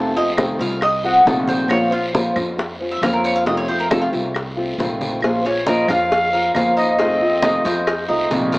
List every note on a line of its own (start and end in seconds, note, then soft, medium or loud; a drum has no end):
0.00 0.54 F2 medium
0.00 0.16 C3 medium
0.00 0.16 D#3 medium
0.00 0.16 A3 medium
0.00 0.16 C4 medium
0.00 0.14 F4 medium
0.00 0.16 A5 loud
0.16 0.38 A3 soft
0.16 0.38 C4 soft
0.16 0.37 F4 medium
0.16 0.30 D#5 loud
0.16 high bongo soft
0.16 high conga soft
0.37 0.59 C3 medium
0.37 0.59 D#3 medium
0.37 0.60 A3 medium
0.37 0.60 C4 medium
0.37 0.59 F4 medium
0.37 high bongo medium
0.37 high conga loud
0.37 short guiro medium
0.37 claves medium
0.59 1.22 C2 loud
0.59 0.81 A3 soft
0.59 0.82 C4 soft
0.59 0.81 F4 medium
0.59 0.82 F5 loud
0.59 high conga soft
0.59 short guiro medium
0.81 1.04 D#5 loud
0.81 muted steel-string acoustic guitar stroke medium
0.81 high bongo medium
0.81 long guiro medium
0.81 claves medium
1.04 1.25 A3 soft
1.04 1.26 C4 soft
1.04 1.25 F4 soft
1.04 1.26 F#4 medium
1.04 high bongo soft
1.04 high conga soft
1.25 2.30 A#1 medium
1.25 1.69 C3 medium
1.25 1.70 D#3 medium
1.25 1.70 A3 medium
1.25 1.70 C4 medium
1.25 1.70 F4 medium
1.25 1.48 A4 medium
1.25 high bongo medium
1.25 low bongo medium
1.25 high conga medium
1.25 short guiro medium
1.48 1.69 C5 loud
1.48 high bongo soft
1.48 high conga medium
1.48 short guiro medium
1.69 1.91 F3 medium
1.69 1.92 A#3 medium
1.69 1.92 C#4 medium
1.69 1.92 F4 medium
1.69 1.90 C5 medium
1.69 1.92 C#5 loud
1.69 high bongo medium
1.69 high conga soft
1.69 long guiro medium
1.69 claves medium
1.92 2.13 C#4 soft
1.92 2.05 F4 loud
1.92 2.13 F4 soft
1.92 2.13 C5 medium
1.92 high conga soft
2.13 2.35 F3 medium
2.13 2.35 A#3 medium
2.13 2.36 C#4 medium
2.13 2.36 F4 medium
2.13 2.34 C5 medium
2.13 high bongo medium
2.13 high conga loud
2.13 short guiro medium
2.35 2.98 F2 loud
2.35 2.57 C#4 soft
2.35 2.57 F4 soft
2.35 2.57 C5 medium
2.35 high conga soft
2.35 low conga medium
2.35 short guiro medium
2.35 claves medium
2.58 muted steel-string acoustic guitar stroke medium
2.58 high bongo medium
2.58 high conga soft
2.58 long guiro medium
2.81 3.02 C#4 soft
2.81 3.02 F4 soft
2.81 3.02 C5 medium
2.81 high conga soft
2.92 3.02 E5 medium
3.02 4.06 F2 medium
3.02 3.45 F3 medium
3.02 3.46 A#3 medium
3.02 3.46 C#4 medium
3.02 3.46 F4 medium
3.02 3.47 C5 medium
3.02 3.13 F5 loud
3.02 high bongo medium
3.02 low bongo medium
3.02 high conga medium
3.02 short guiro medium
3.02 claves medium
3.13 3.24 A#4 medium
3.24 3.35 C#5 loud
3.24 high conga soft
3.24 short guiro medium
3.36 3.46 F5 loud
3.46 3.68 C3 medium
3.46 3.68 D#3 medium
3.46 3.68 A3 medium
3.46 3.68 C4 medium
3.46 3.67 F4 medium
3.46 3.57 D#5 loud
3.46 high bongo medium
3.46 high conga soft
3.46 long guiro medium
3.57 3.68 C#5 loud
3.68 3.90 A3 soft
3.68 3.90 C4 medium
3.68 3.90 F4 medium
3.68 3.79 C5 loud
3.68 high bongo soft
3.68 high conga soft
3.80 3.90 A#4 medium
3.90 4.11 C3 medium
3.90 4.12 D#3 medium
3.90 4.12 A3 medium
3.90 4.12 C4 medium
3.90 4.11 F4 medium
3.90 4.01 A4 medium
3.90 high bongo medium
3.90 high conga loud
3.90 short guiro medium
3.90 claves medium
4.02 4.08 F4 medium
4.13 4.75 C2 loud
4.13 4.35 A3 soft
4.13 4.34 C4 soft
4.13 4.34 F4 soft
4.13 high conga soft
4.13 short guiro medium
4.34 muted steel-string acoustic guitar stroke medium
4.34 high bongo medium
4.34 high conga soft
4.34 long guiro medium
4.34 claves medium
4.57 4.78 A3 soft
4.57 4.78 C4 soft
4.57 4.78 F4 medium
4.57 high bongo soft
4.57 high conga soft
4.78 5.82 A#1 loud
4.78 5.21 C3 medium
4.78 5.22 D#3 medium
4.78 5.22 A3 medium
4.78 5.22 C4 medium
4.78 5.22 F4 medium
4.78 high bongo medium
4.78 low bongo medium
4.78 high conga medium
4.78 short guiro medium
5.01 high bongo soft
5.01 high conga medium
5.01 short guiro medium
5.22 5.44 F3 medium
5.22 5.44 A#3 medium
5.22 5.44 C#4 medium
5.22 5.44 F4 medium
5.22 5.43 C5 medium
5.22 cowbell loud
5.22 high conga soft
5.22 long guiro medium
5.22 claves medium
5.44 5.67 C#4 soft
5.44 5.66 F4 soft
5.44 5.65 C5 soft
5.44 5.69 C#5 medium
5.44 5.66 C#5 medium
5.44 cowbell medium
5.44 high conga soft
5.66 5.88 F3 medium
5.66 5.88 A#3 medium
5.66 5.88 C#4 medium
5.66 5.89 F4 medium
5.66 5.88 A#4 medium
5.66 5.88 C5 medium
5.66 5.90 D#5 loud
5.66 cowbell medium
5.66 high conga loud
5.66 short guiro medium
5.88 6.50 F2 loud
5.88 6.11 C#4 soft
5.88 6.32 F4 medium
5.88 6.11 F4 soft
5.88 6.10 C5 soft
5.88 6.55 F5 loud
5.88 cowbell medium
5.88 high conga soft
5.88 low conga medium
5.88 short guiro medium
5.88 claves medium
6.11 muted steel-string acoustic guitar stroke medium
6.11 cowbell loud
6.11 high conga soft
6.11 long guiro medium
6.33 6.54 C#4 soft
6.33 6.54 F4 soft
6.33 6.76 A#4 medium
6.33 6.54 C5 soft
6.33 high conga soft
6.54 7.59 F2 medium
6.54 6.98 F3 medium
6.54 6.98 A#3 medium
6.54 6.98 C#4 medium
6.54 6.99 F4 medium
6.54 6.99 C5 medium
6.54 6.76 F5 loud
6.54 cowbell medium
6.54 high conga medium
6.54 short guiro medium
6.54 claves medium
6.77 6.98 D#4 medium
6.77 8.06 D#5 loud
6.77 high conga soft
6.77 short guiro medium
6.98 7.20 C3 medium
6.98 7.20 D#3 medium
6.98 7.21 A3 medium
6.98 7.41 C4 medium
6.98 7.21 C4 medium
6.98 7.20 F4 medium
6.98 cowbell loud
6.98 high conga soft
6.98 long guiro medium
7.21 7.42 A3 soft
7.21 7.43 C4 medium
7.21 7.42 F4 medium
7.21 high conga soft
7.42 7.64 C3 medium
7.42 7.64 D#3 medium
7.42 7.64 A3 medium
7.42 7.65 C4 medium
7.42 7.64 D#4 medium
7.42 7.65 F4 medium
7.42 cowbell medium
7.42 high conga loud
7.42 short guiro medium
7.42 claves medium
7.64 8.06 F2 loud
7.64 7.87 A3 soft
7.64 7.87 C4 soft
7.64 7.86 F4 medium
7.64 8.08 C5 medium
7.64 cowbell medium
7.64 high conga soft
7.64 short guiro medium
7.87 muted steel-string acoustic guitar stroke medium
7.87 cowbell loud
7.87 high conga soft
7.87 long guiro medium
7.87 claves medium
8.08 8.30 C2 medium
8.08 8.31 A3 soft
8.08 8.30 C4 soft
8.08 8.51 D#4 medium
8.08 8.30 F4 soft
8.08 high conga soft
8.31 8.59 A#1 loud
8.31 8.59 C3 medium
8.31 8.59 D#3 medium
8.31 8.59 A3 medium
8.31 8.59 C4 medium
8.31 8.59 F4 medium
8.31 cowbell medium
8.31 high conga medium
8.31 short guiro medium
8.52 8.59 A#4 medium
8.52 cowbell medium
8.52 high conga medium
8.52 short guiro medium